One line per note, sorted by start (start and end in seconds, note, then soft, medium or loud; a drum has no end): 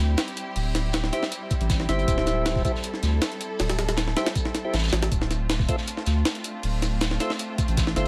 0.00 0.16 D2 medium
0.00 5.08 G3 medium
0.00 5.08 C4 medium
0.00 5.08 E4 medium
0.00 2.05 G4 medium
0.18 snare loud
0.18 closed hi-hat medium
0.18 shaker medium
0.28 closed hi-hat soft
0.37 closed hi-hat medium
0.37 shaker medium
0.56 1.11 D1 loud
0.56 closed hi-hat medium
0.56 open hi-hat medium
0.75 snare medium
0.75 closed hi-hat medium
0.75 shaker medium
0.93 snare loud
0.93 closed hi-hat medium
0.93 shaker medium
1.04 snare medium
1.12 1.24 E4 medium
1.12 1.24 G4 medium
1.12 1.24 C5 medium
1.12 1.24 E5 loud
1.12 snare soft
1.12 closed hi-hat medium
1.12 shaker medium
1.23 snare soft
1.23 snare medium
1.32 closed hi-hat medium
1.32 shaker medium
1.51 kick loud
1.51 closed hi-hat medium
1.51 shaker medium
1.61 1.87 A1 medium
1.61 closed hi-hat soft
1.70 kick loud
1.70 snare loud
1.70 closed hi-hat medium
1.70 shaker medium
1.80 snare soft
1.89 2.06 G1 loud
1.89 2.63 E4 loud
1.89 2.63 G4 medium
1.89 2.63 C5 medium
1.89 2.63 E5 loud
1.89 snare soft
1.89 closed hi-hat medium
1.89 shaker medium
1.99 closed hi-hat soft
2.08 2.63 D1 loud
2.08 5.08 A4 medium
2.08 kick loud
2.08 closed hi-hat medium
2.08 shaker medium
2.18 snare medium
2.27 snare medium
2.27 closed hi-hat medium
2.27 shaker medium
2.45 snare loud
2.45 closed hi-hat medium
2.45 shaker medium
2.56 kick loud
2.56 snare soft
2.65 2.72 E4 medium
2.65 2.72 G4 medium
2.65 2.72 C5 medium
2.65 2.72 E5 loud
2.65 kick loud
2.65 closed hi-hat medium
2.65 shaker medium
2.75 snare soft
2.83 closed hi-hat medium
2.83 shaker medium
2.94 snare soft
3.03 3.20 D2 loud
3.03 snare soft
3.03 closed hi-hat medium
3.03 shaker medium
3.22 snare loud
3.22 closed hi-hat medium
3.22 shaker loud
3.32 closed hi-hat soft
3.41 closed hi-hat medium
3.41 shaker medium
3.59 4.15 D1 loud
3.59 snare loud
3.59 closed hi-hat medium
3.59 open hi-hat medium
3.69 snare loud
3.69 closed hi-hat medium
3.79 snare loud
3.79 closed hi-hat medium
3.89 snare loud
3.89 closed hi-hat medium
3.97 snare loud
3.97 closed hi-hat medium
3.97 shaker medium
4.08 snare medium
4.17 4.28 E4 medium
4.17 4.28 G4 medium
4.17 4.28 C5 medium
4.17 4.28 E5 loud
4.17 snare loud
4.17 closed hi-hat medium
4.17 shaker medium
4.26 snare soft
4.26 snare loud
4.26 closed hi-hat medium
4.36 kick loud
4.36 closed hi-hat medium
4.36 shaker medium
4.45 snare medium
4.54 snare soft
4.54 closed hi-hat medium
4.54 shaker medium
4.65 4.76 E4 medium
4.65 4.76 G4 medium
4.65 4.76 C5 medium
4.65 4.76 E5 medium
4.73 4.91 A1 medium
4.73 snare soft
4.73 snare medium
4.73 closed hi-hat medium
4.73 shaker medium
4.78 snare medium
4.78 shaker medium
4.83 snare medium
4.83 shaker medium
4.88 snare loud
4.88 shaker medium
4.93 5.10 A1 medium
4.93 snare loud
4.93 closed hi-hat medium
5.03 snare loud
5.03 closed hi-hat medium
5.11 5.67 D1 loud
5.11 8.08 A3 medium
5.11 8.08 C4 medium
5.11 8.08 D4 medium
5.11 8.08 F4 medium
5.11 kick loud
5.11 closed hi-hat medium
5.11 shaker loud
5.22 snare medium
5.31 snare medium
5.31 closed hi-hat medium
5.31 shaker medium
5.50 snare loud
5.50 closed hi-hat medium
5.50 shaker medium
5.59 kick loud
5.59 snare soft
5.68 5.76 F4 medium
5.68 5.76 A4 medium
5.68 5.76 C5 medium
5.68 5.76 E5 loud
5.68 kick loud
5.68 closed hi-hat medium
5.68 shaker medium
5.78 snare soft
5.87 closed hi-hat medium
5.87 shaker loud
5.97 snare soft
6.06 6.24 D2 medium
6.06 snare soft
6.06 closed hi-hat medium
6.06 shaker medium
6.25 snare loud
6.25 closed hi-hat loud
6.25 shaker medium
6.35 closed hi-hat soft
6.44 closed hi-hat medium
6.44 shaker medium
6.63 7.19 D1 loud
6.63 closed hi-hat medium
6.63 open hi-hat medium
6.82 snare medium
6.82 closed hi-hat medium
6.82 shaker medium
7.01 snare loud
7.01 closed hi-hat medium
7.01 shaker loud
7.11 snare medium
7.20 7.32 F4 medium
7.20 7.32 A4 medium
7.20 7.32 C5 medium
7.20 7.32 E5 loud
7.20 snare medium
7.20 closed hi-hat medium
7.20 shaker medium
7.30 snare medium
7.30 snare soft
7.39 closed hi-hat medium
7.39 shaker medium
7.58 kick medium
7.58 closed hi-hat medium
7.58 shaker medium
7.68 7.95 A1 medium
7.68 closed hi-hat soft
7.77 kick loud
7.77 snare loud
7.77 closed hi-hat medium
7.77 shaker medium
7.87 snare medium
7.96 8.08 G1 loud
7.96 8.08 F4 loud
7.96 8.08 A4 medium
7.96 8.08 C5 medium
7.96 8.08 E5 loud
7.96 snare soft
7.96 closed hi-hat medium
7.96 shaker medium